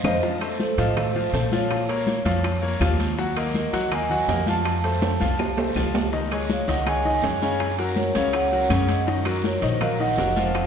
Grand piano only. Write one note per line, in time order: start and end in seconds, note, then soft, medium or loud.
0.04 0.16 C5 medium
0.04 0.16 D#5 medium
0.04 0.16 F5 medium
0.23 0.38 F3 medium
0.23 0.38 F4 medium
0.23 0.38 F5 medium
0.41 0.72 A3 medium
0.41 0.72 A4 medium
0.41 0.72 C5 medium
0.78 0.93 F3 medium
0.78 0.93 F4 medium
0.78 0.94 F5 medium
0.97 1.12 A3 medium
0.97 1.12 A4 medium
0.97 1.12 C5 medium
1.16 1.31 F3 medium
1.16 1.31 F4 medium
1.16 1.31 F5 medium
1.34 1.49 A3 medium
1.34 1.49 A4 medium
1.34 1.49 C5 medium
1.52 1.82 F3 medium
1.52 1.83 F4 medium
1.52 1.83 F5 medium
1.89 2.19 A#3 medium
1.89 2.19 A#4 medium
1.89 2.19 C#5 medium
2.25 2.56 F3 medium
2.25 2.56 F4 medium
2.25 2.56 F5 medium
2.62 2.77 A#3 medium
2.62 2.78 A#4 medium
2.62 2.78 C#5 medium
2.81 3.11 F3 medium
2.81 3.12 F4 medium
2.81 3.12 F5 medium
3.18 3.33 F#3 medium
3.18 3.33 F#4 medium
3.18 3.34 F#5 medium
3.37 3.67 A#3 medium
3.37 3.67 A#4 medium
3.37 3.67 D#5 medium
3.73 3.88 F#3 medium
3.73 3.88 F#4 medium
3.73 3.89 F#5 medium
3.91 4.07 A#3 medium
3.91 4.07 A#4 medium
3.91 4.07 D#5 medium
4.10 4.25 F#3 medium
4.10 4.26 F#4 medium
4.10 4.26 F#5 medium
4.29 4.44 A#3 medium
4.29 4.44 A#4 medium
4.29 4.44 D#5 medium
4.47 4.77 F3 medium
4.47 4.77 F4 medium
4.47 4.78 F5 medium
4.84 5.14 A3 medium
4.84 5.14 A4 medium
4.84 5.15 C5 medium
5.20 5.51 F3 medium
5.20 5.51 F4 medium
5.20 5.51 F5 medium
5.57 5.72 A3 medium
5.57 5.73 A4 medium
5.57 5.73 C5 medium
5.76 6.06 F3 medium
5.76 6.06 F4 medium
5.76 6.07 F5 medium
6.13 6.28 D#3 medium
6.13 6.28 D#4 medium
6.13 6.28 D#5 medium
6.32 6.62 G#3 medium
6.32 6.62 G#4 medium
6.32 6.62 C#5 medium
6.68 6.83 D#3 medium
6.68 6.83 D#4 medium
6.68 6.83 D#5 medium
6.87 7.02 G#3 medium
6.87 7.02 G#4 medium
6.87 7.02 C#5 medium
7.05 7.20 D#3 medium
7.05 7.20 D#4 medium
7.05 7.20 D#5 medium
7.24 7.39 G#3 medium
7.24 7.39 G#4 medium
7.24 7.39 C#5 medium
7.42 7.72 C#3 medium
7.42 7.72 C#4 medium
7.42 7.73 C#5 medium
7.79 8.09 F#3 medium
7.79 8.09 F#4 medium
7.79 8.09 A#4 medium
8.15 8.46 C#3 medium
8.15 8.46 C#4 medium
8.15 8.46 C#5 medium
8.52 8.67 F#3 medium
8.52 8.67 F#4 medium
8.52 8.68 A#4 medium
8.70 9.00 C#3 medium
8.70 9.01 C#4 medium
8.70 9.01 C#5 medium
9.07 9.22 D#3 medium
9.07 9.23 D#4 medium
9.07 9.23 D#5 medium
9.26 9.56 F#3 medium
9.26 9.56 F#4 medium
9.26 9.56 A#4 medium
9.62 9.78 D#3 medium
9.62 9.78 D#4 medium
9.62 9.78 D#5 medium
9.81 9.96 F#3 medium
9.81 9.96 F#4 medium
9.81 9.97 A#4 medium
10.00 10.15 D#3 medium
10.00 10.15 D#4 medium
10.00 10.15 D#5 medium
10.18 10.33 F#3 medium
10.18 10.33 F#4 medium
10.18 10.33 A#4 medium
10.36 10.66 F3 medium
10.36 10.67 F4 medium
10.36 10.67 F5 medium